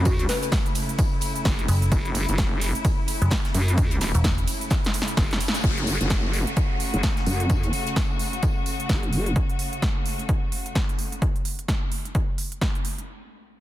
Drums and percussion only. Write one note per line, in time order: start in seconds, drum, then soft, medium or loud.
0.05 kick loud
0.05 closed hi-hat medium
0.05 ride medium
0.05 tambourine loud
0.05 cabasa soft
0.19 closed hi-hat soft
0.29 snare medium
0.29 open hi-hat loud
0.29 ride medium
0.29 tambourine medium
0.29 cabasa medium
0.43 closed hi-hat soft
0.43 cabasa soft
0.52 kick loud
0.52 snare loud
0.52 closed hi-hat medium
0.52 ride medium
0.52 tambourine medium
0.52 cabasa soft
0.66 closed hi-hat soft
0.75 open hi-hat medium
0.75 ride medium
0.75 tambourine medium
0.75 cabasa medium
0.89 closed hi-hat medium
0.89 cabasa soft
0.99 kick loud
0.99 closed hi-hat medium
0.99 ride medium
0.99 tambourine loud
0.99 cabasa soft
1.21 open hi-hat loud
1.21 ride medium
1.21 tambourine medium
1.21 cabasa medium
1.36 closed hi-hat medium
1.36 cabasa soft
1.45 kick loud
1.45 snare loud
1.45 closed hi-hat medium
1.45 ride medium
1.45 tambourine medium
1.45 cabasa soft
1.59 closed hi-hat soft
1.68 open hi-hat loud
1.68 ride medium
1.68 tambourine medium
1.68 cabasa medium
1.82 closed hi-hat medium
1.82 cabasa soft
1.92 kick loud
1.92 closed hi-hat medium
1.92 ride medium
1.92 tambourine medium
1.92 cabasa soft
2.05 closed hi-hat soft
2.15 open hi-hat loud
2.15 ride medium
2.15 tambourine medium
2.15 cabasa medium
2.29 closed hi-hat medium
2.29 closed hi-hat soft
2.29 cabasa soft
2.38 kick loud
2.38 snare loud
2.38 closed hi-hat medium
2.38 ride medium
2.38 tambourine medium
2.38 cabasa soft
2.61 snare medium
2.61 open hi-hat medium
2.61 ride medium
2.61 tambourine medium
2.61 cabasa medium
2.75 closed hi-hat medium
2.75 cabasa soft
2.85 kick loud
2.85 closed hi-hat medium
2.85 ride medium
2.85 tambourine loud
2.85 cabasa soft
3.08 open hi-hat loud
3.08 ride medium
3.08 tambourine medium
3.08 cabasa medium
3.22 closed hi-hat medium
3.22 cabasa soft
3.31 kick loud
3.31 snare loud
3.31 closed hi-hat medium
3.31 ride medium
3.31 tambourine medium
3.31 cabasa soft
3.45 snare medium
3.45 closed hi-hat soft
3.54 open hi-hat medium
3.54 ride medium
3.54 tambourine medium
3.54 cabasa medium
3.68 closed hi-hat medium
3.68 cabasa soft
3.77 kick loud
3.77 closed hi-hat medium
3.77 ride medium
3.77 tambourine medium
3.77 cabasa soft
3.91 closed hi-hat medium
3.91 closed hi-hat soft
4.01 snare medium
4.01 open hi-hat loud
4.01 ride medium
4.01 tambourine medium
4.01 cabasa medium
4.14 closed hi-hat soft
4.14 closed hi-hat medium
4.14 cabasa soft
4.24 kick loud
4.24 snare loud
4.24 closed hi-hat medium
4.24 ride medium
4.24 tambourine medium
4.24 cabasa soft
4.38 closed hi-hat soft
4.47 open hi-hat medium
4.47 ride medium
4.47 tambourine medium
4.47 cabasa medium
4.61 closed hi-hat medium
4.61 cabasa soft
4.70 kick loud
4.70 snare medium
4.70 closed hi-hat medium
4.70 ride medium
4.70 tambourine medium
4.70 cabasa soft
4.85 snare medium
4.85 closed hi-hat soft
4.93 open hi-hat medium
4.93 ride medium
4.93 tambourine medium
4.93 cabasa medium
5.02 snare medium
5.08 closed hi-hat medium
5.08 cabasa soft
5.17 kick loud
5.17 snare medium
5.17 snare loud
5.17 closed hi-hat medium
5.17 ride medium
5.17 tambourine medium
5.17 cabasa soft
5.31 snare loud
5.31 closed hi-hat soft
5.40 snare medium
5.40 open hi-hat medium
5.40 ride medium
5.40 tambourine medium
5.40 cabasa medium
5.48 snare loud
5.54 snare loud
5.54 closed hi-hat medium
5.54 tambourine medium
5.54 cabasa soft
5.64 kick loud
5.64 closed hi-hat medium
5.64 tambourine medium
5.77 closed hi-hat soft
5.87 open hi-hat loud
5.87 tambourine medium
6.01 closed hi-hat soft
6.01 closed hi-hat medium
6.10 kick loud
6.10 snare loud
6.10 closed hi-hat medium
6.10 tambourine medium
6.33 snare medium
6.33 open hi-hat medium
6.33 tambourine medium
6.47 closed hi-hat medium
6.57 kick loud
6.57 closed hi-hat medium
6.57 tambourine medium
6.80 open hi-hat loud
6.80 tambourine medium
6.94 closed hi-hat medium
7.03 kick loud
7.03 snare loud
7.03 closed hi-hat medium
7.03 tambourine medium
7.17 snare medium
7.17 closed hi-hat soft
7.26 open hi-hat medium
7.26 tambourine medium
7.40 closed hi-hat medium
7.50 kick loud
7.50 closed hi-hat medium
7.50 tambourine medium
7.63 closed hi-hat soft
7.73 open hi-hat loud
7.73 tambourine medium
7.87 closed hi-hat soft
7.96 kick loud
7.96 snare loud
7.96 closed hi-hat medium
7.96 tambourine medium
8.19 open hi-hat medium
8.19 tambourine medium
8.33 closed hi-hat medium
8.43 kick loud
8.43 closed hi-hat medium
8.43 tambourine loud
8.66 open hi-hat loud
8.66 tambourine medium
8.80 closed hi-hat medium
8.89 kick loud
8.89 snare loud
8.89 closed hi-hat medium
8.89 tambourine medium
9.03 closed hi-hat soft
9.13 open hi-hat medium
9.13 tambourine medium
9.26 closed hi-hat soft
9.36 kick loud
9.36 closed hi-hat medium
9.50 closed hi-hat soft
9.59 open hi-hat loud
9.73 closed hi-hat soft
9.82 kick loud
9.82 snare loud
9.82 closed hi-hat medium
10.06 open hi-hat medium
10.19 closed hi-hat soft
10.29 kick loud
10.29 closed hi-hat medium
10.52 open hi-hat medium
10.66 closed hi-hat soft
10.75 kick loud
10.75 snare loud
10.75 closed hi-hat medium
10.89 closed hi-hat soft
10.99 open hi-hat medium
11.12 closed hi-hat soft
11.22 kick loud
11.22 closed hi-hat medium
11.36 closed hi-hat soft
11.45 open hi-hat loud
11.59 closed hi-hat soft
11.68 kick loud
11.68 snare loud
11.68 closed hi-hat medium
11.92 open hi-hat medium
12.05 closed hi-hat soft
12.15 kick loud
12.15 closed hi-hat medium
12.38 open hi-hat loud
12.52 closed hi-hat soft
12.61 kick loud
12.61 snare loud
12.61 closed hi-hat medium
12.75 closed hi-hat soft
12.85 open hi-hat medium
12.98 closed hi-hat soft